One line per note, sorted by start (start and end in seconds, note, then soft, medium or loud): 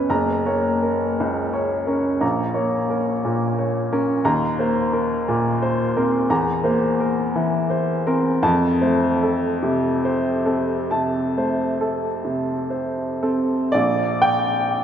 0.00 0.13 C#2 medium
0.00 0.13 B3 soft
0.00 0.10 C#4 medium
0.00 0.13 B4 medium
0.00 0.13 C#5 medium
0.10 2.18 F#1 medium
0.10 0.69 A#5 medium
0.46 1.05 A#3 soft
0.46 1.05 C#5 medium
0.83 1.40 A#4 soft
1.20 1.75 C#2 medium
1.53 2.08 C#5 medium
1.87 2.22 C#4 medium
1.87 2.22 A#4 soft
2.21 4.21 A#1 medium
2.21 2.77 A#5 medium
2.54 3.11 A#3 medium
2.54 3.11 C#5 medium
2.90 3.46 A#4 medium
3.25 3.79 A#2 medium
3.59 4.12 C#5 soft
3.93 4.26 C#4 medium
3.93 4.26 A#4 medium
4.25 6.26 D#2 medium
4.25 4.80 A#5 medium
4.59 5.15 A#3 medium
4.59 5.15 C5 medium
4.93 5.49 A#4 medium
5.28 5.83 A#2 medium
5.62 6.17 C5 medium
5.97 6.31 C4 medium
5.97 6.31 A#4 medium
6.30 8.39 E2 medium
6.30 6.86 A#5 medium
6.64 7.21 A#3 medium
6.64 7.21 C5 medium
7.00 7.56 A#4 medium
7.36 7.92 E3 medium
7.70 8.29 C5 medium
8.07 8.44 C4 medium
8.07 8.44 A#4 medium
8.43 10.87 F2 medium
8.43 9.05 A5 medium
8.82 9.46 A3 medium
8.82 9.46 C5 medium
9.23 9.88 A4 medium
9.63 10.30 C3 medium
10.05 10.74 C5 medium
10.46 11.18 C4 soft
10.46 11.18 A4 medium
10.91 11.63 C3 soft
10.91 11.63 A5 medium
11.37 12.07 A3 soft
11.37 12.07 C5 medium
11.81 12.51 A4 medium
12.24 13.00 C3 medium
12.70 13.54 C5 soft
13.23 13.76 C4 soft
13.23 13.76 A4 medium
13.72 14.84 A#1 medium
13.72 14.22 D5 medium
14.22 14.84 G5 medium